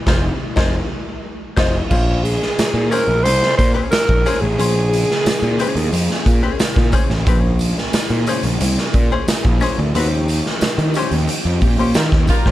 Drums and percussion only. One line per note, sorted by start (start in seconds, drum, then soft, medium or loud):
0.07 kick loud
0.07 snare loud
0.57 kick loud
0.57 snare loud
1.57 kick loud
1.57 snare loud
1.57 crash medium
1.91 kick loud
1.91 crash medium
1.91 tambourine soft
2.25 closed hi-hat medium
2.25 tambourine medium
2.42 snare soft
2.59 snare loud
2.59 closed hi-hat medium
2.59 tambourine medium
2.92 closed hi-hat medium
2.92 tambourine medium
3.25 closed hi-hat loud
3.25 tambourine medium
3.43 snare soft
3.58 kick medium
3.58 closed hi-hat medium
3.58 tambourine soft
3.92 snare loud
3.92 closed hi-hat loud
3.92 tambourine medium
4.09 kick medium
4.25 closed hi-hat medium
4.25 tambourine soft
4.59 closed hi-hat medium
4.59 tambourine soft
4.93 closed hi-hat medium
4.93 tambourine medium
5.11 snare soft
5.26 snare loud
5.26 closed hi-hat medium
5.26 tambourine medium
5.59 closed hi-hat medium
5.59 tambourine medium
5.77 closed hi-hat medium
5.93 closed hi-hat medium
5.93 tambourine medium
6.11 snare soft
6.26 kick medium
6.26 closed hi-hat medium
6.26 tambourine soft
6.59 snare loud
6.59 closed hi-hat loud
6.59 tambourine medium
6.76 kick medium
6.76 snare soft
6.92 kick medium
6.92 closed hi-hat medium
6.92 tambourine medium
7.10 snare soft
7.26 kick loud
7.26 closed hi-hat medium
7.26 tambourine soft
7.59 closed hi-hat medium
7.59 tambourine medium
7.78 snare soft
7.93 snare loud
7.93 closed hi-hat loud
7.93 tambourine medium
8.10 closed hi-hat soft
8.27 closed hi-hat medium
8.27 tambourine medium
8.43 closed hi-hat medium
8.61 closed hi-hat loud
8.61 tambourine medium
8.78 snare soft
8.94 kick medium
8.94 closed hi-hat medium
9.28 snare loud
9.28 closed hi-hat loud
9.28 tambourine loud
9.45 kick medium
9.60 closed hi-hat medium
9.60 tambourine medium
9.95 closed hi-hat medium
10.28 closed hi-hat medium
10.28 tambourine medium
10.46 snare soft
10.61 snare loud
10.61 closed hi-hat medium
10.61 tambourine medium
10.79 closed hi-hat medium
10.94 closed hi-hat medium
10.94 tambourine medium
11.11 closed hi-hat medium
11.28 closed hi-hat medium
11.28 tambourine medium
11.61 kick medium
11.61 open hi-hat medium
11.61 tambourine soft
11.94 snare loud
11.94 closed hi-hat loud
11.94 tambourine loud
12.12 kick medium
12.12 snare soft
12.27 kick loud
12.27 closed hi-hat medium
12.27 tambourine medium
12.46 kick medium
12.46 snare soft